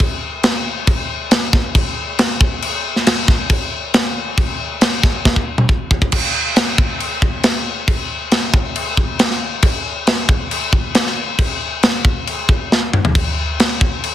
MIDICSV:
0, 0, Header, 1, 2, 480
1, 0, Start_track
1, 0, Tempo, 438276
1, 966, Time_signature, 4, 2, 24, 8
1, 15494, End_track
2, 0, Start_track
2, 0, Title_t, "Drums"
2, 0, Note_on_c, 9, 49, 52
2, 1, Note_on_c, 9, 36, 106
2, 108, Note_off_c, 9, 49, 0
2, 111, Note_off_c, 9, 36, 0
2, 474, Note_on_c, 9, 49, 63
2, 481, Note_on_c, 9, 38, 122
2, 583, Note_off_c, 9, 49, 0
2, 591, Note_off_c, 9, 38, 0
2, 953, Note_on_c, 9, 49, 61
2, 958, Note_on_c, 9, 36, 110
2, 1062, Note_off_c, 9, 49, 0
2, 1067, Note_off_c, 9, 36, 0
2, 1434, Note_on_c, 9, 49, 64
2, 1442, Note_on_c, 9, 38, 111
2, 1544, Note_off_c, 9, 49, 0
2, 1552, Note_off_c, 9, 38, 0
2, 1677, Note_on_c, 9, 36, 90
2, 1682, Note_on_c, 9, 38, 36
2, 1787, Note_off_c, 9, 36, 0
2, 1792, Note_off_c, 9, 38, 0
2, 1913, Note_on_c, 9, 49, 61
2, 1917, Note_on_c, 9, 36, 111
2, 2023, Note_off_c, 9, 49, 0
2, 2026, Note_off_c, 9, 36, 0
2, 2394, Note_on_c, 9, 49, 71
2, 2402, Note_on_c, 9, 38, 123
2, 2504, Note_off_c, 9, 49, 0
2, 2511, Note_off_c, 9, 38, 0
2, 2635, Note_on_c, 9, 36, 105
2, 2745, Note_off_c, 9, 36, 0
2, 2873, Note_on_c, 9, 49, 64
2, 2982, Note_off_c, 9, 49, 0
2, 3245, Note_on_c, 9, 38, 31
2, 3355, Note_off_c, 9, 38, 0
2, 3357, Note_on_c, 9, 49, 66
2, 3364, Note_on_c, 9, 38, 111
2, 3466, Note_off_c, 9, 49, 0
2, 3474, Note_off_c, 9, 38, 0
2, 3595, Note_on_c, 9, 36, 98
2, 3603, Note_on_c, 9, 38, 33
2, 3704, Note_off_c, 9, 36, 0
2, 3713, Note_off_c, 9, 38, 0
2, 3828, Note_on_c, 9, 49, 60
2, 3832, Note_on_c, 9, 36, 105
2, 3937, Note_off_c, 9, 49, 0
2, 3942, Note_off_c, 9, 36, 0
2, 4312, Note_on_c, 9, 49, 62
2, 4319, Note_on_c, 9, 38, 125
2, 4421, Note_off_c, 9, 49, 0
2, 4429, Note_off_c, 9, 38, 0
2, 4793, Note_on_c, 9, 36, 108
2, 4795, Note_on_c, 9, 49, 57
2, 4903, Note_off_c, 9, 36, 0
2, 4904, Note_off_c, 9, 49, 0
2, 5270, Note_on_c, 9, 49, 63
2, 5277, Note_on_c, 9, 38, 107
2, 5379, Note_off_c, 9, 49, 0
2, 5387, Note_off_c, 9, 38, 0
2, 5514, Note_on_c, 9, 36, 93
2, 5517, Note_on_c, 9, 38, 36
2, 5623, Note_off_c, 9, 36, 0
2, 5627, Note_off_c, 9, 38, 0
2, 5754, Note_on_c, 9, 36, 106
2, 5760, Note_on_c, 9, 38, 62
2, 5864, Note_off_c, 9, 36, 0
2, 5870, Note_off_c, 9, 38, 0
2, 5874, Note_on_c, 9, 36, 65
2, 5983, Note_off_c, 9, 36, 0
2, 6112, Note_on_c, 9, 47, 71
2, 6222, Note_off_c, 9, 47, 0
2, 6232, Note_on_c, 9, 36, 93
2, 6341, Note_off_c, 9, 36, 0
2, 6471, Note_on_c, 9, 36, 95
2, 6580, Note_off_c, 9, 36, 0
2, 6590, Note_on_c, 9, 36, 80
2, 6700, Note_off_c, 9, 36, 0
2, 6702, Note_on_c, 9, 49, 64
2, 6702, Note_on_c, 9, 57, 116
2, 6710, Note_on_c, 9, 36, 114
2, 6812, Note_off_c, 9, 49, 0
2, 6812, Note_off_c, 9, 57, 0
2, 6819, Note_off_c, 9, 36, 0
2, 7185, Note_on_c, 9, 49, 62
2, 7193, Note_on_c, 9, 38, 113
2, 7295, Note_off_c, 9, 49, 0
2, 7302, Note_off_c, 9, 38, 0
2, 7429, Note_on_c, 9, 36, 91
2, 7538, Note_off_c, 9, 36, 0
2, 7669, Note_on_c, 9, 49, 57
2, 7779, Note_off_c, 9, 49, 0
2, 7908, Note_on_c, 9, 36, 82
2, 8017, Note_off_c, 9, 36, 0
2, 8142, Note_on_c, 9, 49, 63
2, 8149, Note_on_c, 9, 38, 117
2, 8251, Note_off_c, 9, 49, 0
2, 8259, Note_off_c, 9, 38, 0
2, 8625, Note_on_c, 9, 49, 58
2, 8628, Note_on_c, 9, 36, 109
2, 8735, Note_off_c, 9, 49, 0
2, 8738, Note_off_c, 9, 36, 0
2, 9105, Note_on_c, 9, 49, 57
2, 9113, Note_on_c, 9, 38, 101
2, 9215, Note_off_c, 9, 49, 0
2, 9222, Note_off_c, 9, 38, 0
2, 9349, Note_on_c, 9, 36, 97
2, 9458, Note_off_c, 9, 36, 0
2, 9589, Note_on_c, 9, 49, 63
2, 9698, Note_off_c, 9, 49, 0
2, 9828, Note_on_c, 9, 36, 85
2, 9937, Note_off_c, 9, 36, 0
2, 10066, Note_on_c, 9, 49, 70
2, 10074, Note_on_c, 9, 38, 117
2, 10176, Note_off_c, 9, 49, 0
2, 10183, Note_off_c, 9, 38, 0
2, 10195, Note_on_c, 9, 38, 33
2, 10305, Note_off_c, 9, 38, 0
2, 10540, Note_on_c, 9, 49, 66
2, 10546, Note_on_c, 9, 36, 107
2, 10649, Note_off_c, 9, 49, 0
2, 10655, Note_off_c, 9, 36, 0
2, 11027, Note_on_c, 9, 49, 60
2, 11035, Note_on_c, 9, 38, 101
2, 11137, Note_off_c, 9, 49, 0
2, 11144, Note_off_c, 9, 38, 0
2, 11268, Note_on_c, 9, 36, 90
2, 11377, Note_off_c, 9, 36, 0
2, 11511, Note_on_c, 9, 49, 55
2, 11621, Note_off_c, 9, 49, 0
2, 11748, Note_on_c, 9, 36, 79
2, 11857, Note_off_c, 9, 36, 0
2, 11988, Note_on_c, 9, 49, 67
2, 11995, Note_on_c, 9, 38, 114
2, 12097, Note_off_c, 9, 49, 0
2, 12105, Note_off_c, 9, 38, 0
2, 12118, Note_on_c, 9, 38, 33
2, 12228, Note_off_c, 9, 38, 0
2, 12469, Note_on_c, 9, 49, 61
2, 12471, Note_on_c, 9, 36, 114
2, 12579, Note_off_c, 9, 49, 0
2, 12581, Note_off_c, 9, 36, 0
2, 12955, Note_on_c, 9, 49, 61
2, 12962, Note_on_c, 9, 38, 102
2, 13064, Note_off_c, 9, 49, 0
2, 13072, Note_off_c, 9, 38, 0
2, 13194, Note_on_c, 9, 36, 95
2, 13303, Note_off_c, 9, 36, 0
2, 13441, Note_on_c, 9, 49, 58
2, 13550, Note_off_c, 9, 49, 0
2, 13677, Note_on_c, 9, 36, 81
2, 13787, Note_off_c, 9, 36, 0
2, 13934, Note_on_c, 9, 38, 74
2, 14043, Note_off_c, 9, 38, 0
2, 14166, Note_on_c, 9, 45, 90
2, 14275, Note_off_c, 9, 45, 0
2, 14290, Note_on_c, 9, 43, 96
2, 14399, Note_off_c, 9, 43, 0
2, 14404, Note_on_c, 9, 36, 104
2, 14409, Note_on_c, 9, 49, 64
2, 14513, Note_off_c, 9, 36, 0
2, 14519, Note_off_c, 9, 49, 0
2, 14890, Note_on_c, 9, 49, 67
2, 14898, Note_on_c, 9, 38, 101
2, 15000, Note_off_c, 9, 49, 0
2, 15007, Note_off_c, 9, 38, 0
2, 15126, Note_on_c, 9, 36, 97
2, 15235, Note_off_c, 9, 36, 0
2, 15372, Note_on_c, 9, 49, 57
2, 15481, Note_off_c, 9, 49, 0
2, 15494, End_track
0, 0, End_of_file